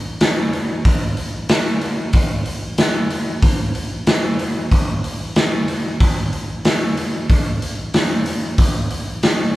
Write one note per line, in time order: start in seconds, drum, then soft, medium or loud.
0.21 snare loud
0.21 open hi-hat medium
0.53 open hi-hat medium
0.85 kick loud
0.85 open hi-hat medium
1.17 open hi-hat medium
1.49 snare loud
1.49 open hi-hat medium
1.81 open hi-hat medium
2.13 kick loud
2.13 open hi-hat medium
2.46 open hi-hat medium
2.78 snare loud
2.78 open hi-hat medium
3.10 open hi-hat medium
3.42 kick loud
3.42 open hi-hat medium
3.75 open hi-hat medium
4.07 snare loud
4.07 open hi-hat medium
4.39 open hi-hat medium
4.71 kick loud
4.71 open hi-hat medium
5.04 open hi-hat medium
5.36 snare loud
5.36 open hi-hat medium
5.68 open hi-hat medium
6.00 kick loud
6.00 open hi-hat medium
6.33 open hi-hat soft
6.65 snare loud
6.65 open hi-hat medium
6.97 open hi-hat medium
7.30 kick loud
7.30 open hi-hat medium
7.62 open hi-hat medium
7.94 snare loud
7.94 open hi-hat medium
8.26 open hi-hat medium
8.58 kick loud
8.58 open hi-hat medium
8.91 open hi-hat medium
9.23 snare loud
9.23 open hi-hat medium